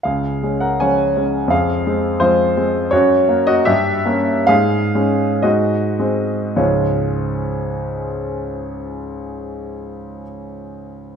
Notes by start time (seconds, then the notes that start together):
0.03 C#2 G#4 F5
0.43 G#3 C#4
0.60 A#4 F#5
0.80 F3 G#3 C#4 C#5 G#5
1.17 G#3 C#4
1.48 F2 G#4 F5
1.87 G#3 C4
2.20 F3 G#3 C4 F4 C5
2.57 G#3 C4
2.91 F#2 F#4 C#5
3.29 A#3
3.47 F#4 D#5
3.65 G2 G4 E5
4.06 A#3 C#4
4.47 G#2 G#4 F5
4.95 G#3 C#4
5.42 G#2 F#4 D#5
5.99 G#3 C4
6.56 C#2 G#2 F3 G#3 C#4 F4 C#5